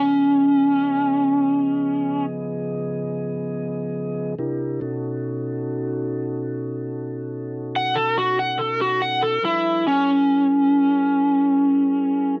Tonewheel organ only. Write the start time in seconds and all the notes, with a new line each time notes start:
Already playing: C#3 F3 B3 G#4 D#5
4.38 C3 D4 E4 G4 A#4
4.81 B2 C#4 D#4 F#4 A4
9.42 F3 G3 D4 A4 B4
9.85 F#3 C#4 E4 G#4 A#4